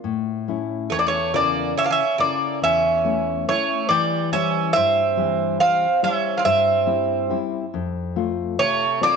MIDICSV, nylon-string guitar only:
0, 0, Header, 1, 2, 480
1, 0, Start_track
1, 0, Tempo, 852273
1, 31, Time_signature, 9, 3, 24, 8
1, 5161, End_track
2, 0, Start_track
2, 0, Title_t, "Nylon-string guitar"
2, 0, Program_c, 0, 24
2, 22, Note_on_c, 0, 45, 67
2, 270, Note_on_c, 0, 57, 47
2, 273, Note_on_c, 0, 61, 45
2, 276, Note_on_c, 0, 64, 52
2, 493, Note_off_c, 0, 45, 0
2, 508, Note_on_c, 0, 40, 66
2, 655, Note_off_c, 0, 61, 0
2, 656, Note_off_c, 0, 57, 0
2, 658, Note_off_c, 0, 64, 0
2, 753, Note_on_c, 0, 49, 46
2, 754, Note_on_c, 0, 69, 53
2, 759, Note_on_c, 0, 64, 59
2, 976, Note_off_c, 0, 40, 0
2, 1136, Note_off_c, 0, 69, 0
2, 1137, Note_off_c, 0, 49, 0
2, 1140, Note_off_c, 0, 64, 0
2, 1234, Note_on_c, 0, 49, 41
2, 1235, Note_on_c, 0, 69, 52
2, 1242, Note_on_c, 0, 64, 51
2, 1476, Note_on_c, 0, 40, 57
2, 1617, Note_off_c, 0, 69, 0
2, 1618, Note_off_c, 0, 49, 0
2, 1622, Note_off_c, 0, 64, 0
2, 1716, Note_on_c, 0, 57, 53
2, 1719, Note_on_c, 0, 61, 48
2, 1723, Note_on_c, 0, 64, 56
2, 1940, Note_off_c, 0, 40, 0
2, 1956, Note_off_c, 0, 57, 0
2, 1958, Note_off_c, 0, 61, 0
2, 1959, Note_off_c, 0, 64, 0
2, 1963, Note_on_c, 0, 57, 47
2, 1965, Note_on_c, 0, 61, 41
2, 1966, Note_on_c, 0, 64, 51
2, 2151, Note_off_c, 0, 57, 0
2, 2152, Note_off_c, 0, 61, 0
2, 2152, Note_off_c, 0, 64, 0
2, 2197, Note_on_c, 0, 52, 74
2, 2434, Note_on_c, 0, 55, 50
2, 2439, Note_on_c, 0, 64, 54
2, 2441, Note_on_c, 0, 72, 40
2, 2660, Note_off_c, 0, 52, 0
2, 2682, Note_on_c, 0, 43, 66
2, 2817, Note_off_c, 0, 55, 0
2, 2821, Note_off_c, 0, 64, 0
2, 2821, Note_off_c, 0, 72, 0
2, 2912, Note_on_c, 0, 55, 50
2, 2913, Note_on_c, 0, 60, 44
2, 2917, Note_on_c, 0, 52, 55
2, 3143, Note_off_c, 0, 43, 0
2, 3296, Note_off_c, 0, 60, 0
2, 3297, Note_off_c, 0, 55, 0
2, 3299, Note_off_c, 0, 52, 0
2, 3393, Note_on_c, 0, 55, 56
2, 3396, Note_on_c, 0, 64, 58
2, 3397, Note_on_c, 0, 72, 48
2, 3631, Note_on_c, 0, 43, 61
2, 3777, Note_off_c, 0, 55, 0
2, 3779, Note_off_c, 0, 64, 0
2, 3779, Note_off_c, 0, 72, 0
2, 3867, Note_on_c, 0, 55, 56
2, 3868, Note_on_c, 0, 60, 46
2, 3870, Note_on_c, 0, 64, 54
2, 4097, Note_off_c, 0, 43, 0
2, 4103, Note_off_c, 0, 60, 0
2, 4104, Note_off_c, 0, 55, 0
2, 4108, Note_off_c, 0, 64, 0
2, 4110, Note_on_c, 0, 55, 53
2, 4112, Note_on_c, 0, 60, 47
2, 4115, Note_on_c, 0, 64, 58
2, 4303, Note_off_c, 0, 55, 0
2, 4303, Note_off_c, 0, 60, 0
2, 4306, Note_off_c, 0, 64, 0
2, 4357, Note_on_c, 0, 41, 67
2, 4596, Note_on_c, 0, 57, 51
2, 4599, Note_on_c, 0, 65, 49
2, 4820, Note_off_c, 0, 41, 0
2, 4838, Note_on_c, 0, 48, 68
2, 4978, Note_off_c, 0, 57, 0
2, 4980, Note_off_c, 0, 65, 0
2, 5075, Note_on_c, 0, 60, 44
2, 5075, Note_on_c, 0, 69, 49
2, 5078, Note_on_c, 0, 65, 57
2, 5161, Note_off_c, 0, 48, 0
2, 5161, Note_off_c, 0, 60, 0
2, 5161, Note_off_c, 0, 65, 0
2, 5161, Note_off_c, 0, 69, 0
2, 5161, End_track
0, 0, End_of_file